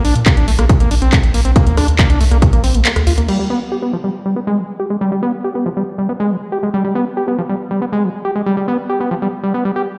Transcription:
0.05 A#1 D4, open hi-hat
0.15 A#2, closed hi-hat
0.26 A#3, kick, clap, closed hi-hat
0.37 A#1 D4, closed hi-hat
0.48 A#1 A3, open hi-hat
0.59 A#1 A#3, cross-stick, closed hi-hat
0.69 kick, closed hi-hat
0.80 A#1 A#3, closed hi-hat
0.91 A#1 D4, open hi-hat
1.02 A#1 C4, closed hi-hat
1.13 A3, kick, cross-stick, clap, closed hi-hat
1.23 A#1, closed hi-hat
1.34 A#1 A#3, open hi-hat
1.45 A#1 C4, closed hi-hat
1.56 A#3, kick, closed hi-hat
1.67 D2 A#3, closed hi-hat
1.77 D2 D4, cross-stick, open hi-hat
1.88 D2, closed hi-hat
1.99 A#3, kick, clap, closed hi-hat
2.10 C2 D4, closed hi-hat
2.21 C2 A3, open hi-hat
2.31 C2 A#3, cross-stick, closed hi-hat
2.42 kick, closed hi-hat
2.53 A#1 A#3, closed hi-hat
2.64 A#1 C4, open hi-hat
2.74 A#1 A3, closed hi-hat
2.85 A#3, clap, closed hi-hat
2.96 D2, cross-stick, closed hi-hat
3.07 D2 F4, open hi-hat
3.18 D2 A#3, closed hi-hat
3.28 G3, crash
3.39 G3
3.50 B3
3.72 G4
3.82 B3
3.93 F3
4.04 G3
4.26 G3
4.36 B3
4.47 G#3
4.58 F3
4.80 G4
4.90 G#3
5.01 G3
5.12 G3
5.23 B3
5.44 G4
5.55 B3
5.66 F3
5.77 G3
5.98 G3
6.09 B3
6.20 G#3
6.31 F3
6.52 G4
6.63 G#3
6.74 G3
6.85 G3
6.95 B3
7.17 G4
7.28 B3
7.39 F3
7.49 G3
7.71 G3
7.82 B3
7.92 G#3
8.03 F3
8.25 G4
8.36 G#3
8.46 G3
8.57 G3
8.68 B3
8.90 G4
9.00 B3
9.11 F3
9.22 G3
9.44 G3
9.54 B3
9.65 G3
9.76 G4

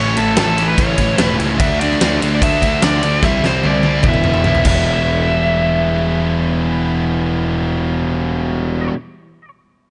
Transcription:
Already playing: A1 A2 E3 A3 C#4 E4 C#5
0.14 A1 A2 E3 A3 C#4 E4 A4, ride
0.35 A1 A2 E3 A3 C#4 E4 A4, snare, ride
0.56 A2 E3 A3 C#4 E4, ride
0.69 B4
0.76 A1 A2 E3 A3 C#4 E4 C#5, kick, ride
0.95 A1 A2 E3 A3 C#4 E4, kick, ride
1.00 A2
1.15 A2 E3 A3 C#4 E4, snare, ride
1.19 E1 A2 A3 B4
1.36 C#2 A2 E3 A3 C#4 E4, ride
1.41 A2 E3 A3
1.58 D2 D3 A3 D4 F#4 E5, kick, ride
1.78 D3 A3 D4 F#4 D5, ride
1.82 D3 A3 D4
1.91 snare
1.99 D2 D3 A3 D4 F#4, snare, ride
2.21 D2 D3 A3 D4 F#4, ride
2.35 D5
2.40 D2 D3 A3 D4 F#4 E5, kick, ride
2.61 D3 A3 D4 F#4, kick, ride
2.82 D2 D3 A3 D4 F#4 D5, snare, ride
3.01 D2 D3 A3 D4 F#4, ride
3.21 C2 C3 E3 G3 C4 E4 E5, kick, snare
3.42 C2 C3 E3 G3 C4 E4 C5, snare
3.62 C2 C3 E3 G3 C4 E4, high tom
3.67 D5
3.82 C3 E3 G3 C4 E4, high tom
4.03 E1 E2 B2 E3 G3 B3 E4, kick, mid tom
4.07 E3 E5
4.14 mid tom
4.24 E1 E2 B2 E3 G3 B3 E4, mid tom
4.34 mid tom
4.44 B1 E2 B2 E3 G3 B3 E4, mid tom
4.55 floor tom
4.64 E1 E2 B2 E3 G3 B3 E4 E5, kick, crash
4.69 E3

